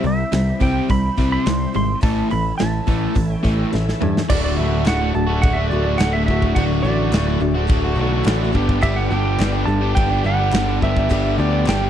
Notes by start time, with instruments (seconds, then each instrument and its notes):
Already playing: tonewheel organ C4 G4 E5
0.03 picked electric bass C2, overdriven electric guitar C3 G3, steel-string acoustic guitar C4 E4, electric slide guitar E5, open hi-hat
0.32 picked electric bass C2, overdriven electric guitar C3 G3, steel-string acoustic guitar E3 C4 E4, snare, open hi-hat
0.60 picked electric bass C2, overdriven electric guitar C3 G3 C4, steel-string acoustic guitar E4, electric slide guitar G5, kick, open hi-hat
0.88 picked electric bass C2, overdriven electric guitar C3 G3, steel-string acoustic guitar E3 C4 E4, electric slide guitar B5, kick, open hi-hat
1.17 picked electric bass C2, overdriven electric guitar C3 G3 C4, steel-string acoustic guitar E4, kick, snare, open hi-hat
1.32 electric slide guitar C6
1.46 picked electric bass C2, overdriven electric guitar C3 G3, steel-string acoustic guitar E3 C4 E4, snare, open hi-hat
1.72 picked electric bass G#1, overdriven electric guitar C3 G3, steel-string acoustic guitar C4 E4, electric slide guitar C6, open hi-hat
2.01 picked electric bass A1, overdriven electric guitar A2 E3 A3, steel-string acoustic guitar C#4 E4, tonewheel organ C#4 A4 E5, electric slide guitar A5, kick, open hi-hat
2.30 picked electric bass A1, overdriven electric guitar A2 E3, steel-string acoustic guitar A3 C#4 E4, electric slide guitar B5, open hi-hat
2.58 picked electric bass A1, overdriven electric guitar A2 E3, steel-string acoustic guitar A3 C#4 E4, electric slide guitar A5, snare, open hi-hat
2.86 picked electric bass A1, overdriven electric guitar A2 E3 A3, steel-string acoustic guitar C#4 E4, kick, open hi-hat
3.15 picked electric bass A1, overdriven electric guitar A2 E3, steel-string acoustic guitar A3 C#4 E4, kick, open hi-hat
3.34 electric slide guitar G5
3.43 picked electric bass A1, overdriven electric guitar A2 E3 A3, steel-string acoustic guitar C#4 E4, kick, snare, open hi-hat
3.72 picked electric bass A1, overdriven electric guitar A2 E3, steel-string acoustic guitar A3 C#4 E4, snare
3.89 snare
4.01 picked electric bass G2, overdriven electric guitar A2 E3, steel-string acoustic guitar A3 C#4 E4, mid tom
4.17 snare
4.29 picked electric bass D1, overdriven electric guitar D2 A2 D3 A3 F#4, tonewheel organ A3 F#4 D5, steel-string acoustic guitar D4, electric slide guitar D5, kick, crash
4.44 electric slide guitar D5
4.57 picked electric bass D1, overdriven electric guitar A2 D3 A3 F#4, steel-string acoustic guitar D4, electric slide guitar E5
4.85 picked electric bass D1, overdriven electric guitar D2 A2 D3 A3 F#4, steel-string acoustic guitar D4, electric slide guitar F#5, snare, clap, crash
5.00 overdriven electric guitar D3 A3 F#4
5.14 picked electric bass D1, steel-string acoustic guitar A3 D4 F#4, electric slide guitar A5, muted overdriven electric guitar stroke
5.27 overdriven electric guitar D3 A3 F#4
5.42 picked electric bass D1, steel-string acoustic guitar D3 A3 D4 F#4, electric slide guitar F#5, kick, crash
5.53 overdriven electric guitar F#4, electric slide guitar E5
5.58 overdriven electric guitar D3 A3
5.70 picked electric bass D1, overdriven electric guitar A2 D3 A3 F#4, steel-string acoustic guitar D4, electric slide guitar D5
5.85 overdriven electric guitar D3 A3 F#4
5.98 picked electric bass D1, overdriven electric guitar D2 A2 D3 A3 F#4, steel-string acoustic guitar D4, electric slide guitar F#5, snare, clap, crash
6.13 overdriven electric guitar A3 F#4, electric slide guitar E5
6.17 overdriven electric guitar D3
6.26 picked electric bass D1, overdriven electric guitar A2 D3 A3, electric slide guitar E5, kick
6.30 steel-string acoustic guitar D4, overdriven electric guitar F#4
6.42 kick
6.55 picked electric bass D1, overdriven electric guitar D2 A2 D3 A3 F#4, steel-string acoustic guitar D4, tonewheel organ F#4 A4 D5, electric slide guitar F#5, kick, crash
6.83 picked electric bass A1, overdriven electric guitar A2 D3 A3, steel-string acoustic guitar D4, electric slide guitar D5
6.87 overdriven electric guitar F#4
7.12 picked electric bass D1, overdriven electric guitar D2 A2 D3 A3 F#4, steel-string acoustic guitar D4, snare, clap, crash
7.27 overdriven electric guitar D3 A3 F#4
7.40 picked electric bass D1, steel-string acoustic guitar A3 D4 F#4, muted overdriven electric guitar stroke
7.55 overdriven electric guitar D3 A3 F#4
7.67 picked electric bass D1, steel-string acoustic guitar D3 A3 D4 F#4, kick, crash
7.84 overdriven electric guitar D3 A3 F#4
7.90 electric slide guitar C#5
7.95 picked electric bass B1, overdriven electric guitar A2, steel-string acoustic guitar D4 F#4
8.00 overdriven electric guitar D3 A3 F#4
8.12 overdriven electric guitar D3 A3 F#4
8.23 picked electric bass A1, overdriven electric guitar D2 A2, steel-string acoustic guitar D3 D4, clap, crash
8.27 overdriven electric guitar D3 A3 F#4, snare
8.41 overdriven electric guitar D3 A3 F#4, snare
8.54 picked electric bass G1, overdriven electric guitar G2 D3 G3 B3 D4 G4, tonewheel organ B3 G4 D5, kick
8.69 kick
8.82 picked electric bass G1, overdriven electric guitar G2 D3 G3 B3 D4 G4, electric slide guitar E5, kick, crash
8.96 electric slide guitar F#5
9.09 picked electric bass G1, overdriven electric guitar G3 B3 D4 G4, electric slide guitar G5
9.39 picked electric bass G1, overdriven electric guitar G2 D3 G3 B3 D4 G4, snare, clap, crash
9.52 overdriven electric guitar G3 B3 D4 G4
9.66 picked electric bass G1, steel-string acoustic guitar D4 G4, electric slide guitar A5, muted overdriven electric guitar stroke
9.70 steel-string acoustic guitar G3 B3
9.81 overdriven electric guitar G3 B3 D4 G4
9.95 picked electric bass G1, steel-string acoustic guitar G2 D3 G3 B3 D4 G4, electric slide guitar G5, kick, crash
10.10 overdriven electric guitar G3 B3 D4 G4
10.24 picked electric bass G1, overdriven electric guitar G3 B3 D4 G4, electric slide guitar F#5
10.39 overdriven electric guitar G3 B3 D4 G4
10.53 picked electric bass G1, overdriven electric guitar G2 D3 G3 B3 D4 G4, snare, clap, crash
10.68 overdriven electric guitar G3 B3 D4 G4
10.82 picked electric bass G1, overdriven electric guitar G3 B3 D4 G4, tonewheel organ B3 G4 D5, electric slide guitar E5, kick
10.96 kick
11.10 picked electric bass G1, overdriven electric guitar G2 D3 G3 B3 D4 G4, kick, crash
11.38 picked electric bass D2, overdriven electric guitar G3 B3 D4 G4, electric slide guitar D5
11.67 picked electric bass G1, overdriven electric guitar G2 D3 G3 B3 D4 G4, electric slide guitar G5, snare, clap, crash
11.82 overdriven electric guitar G3 B3 D4 G4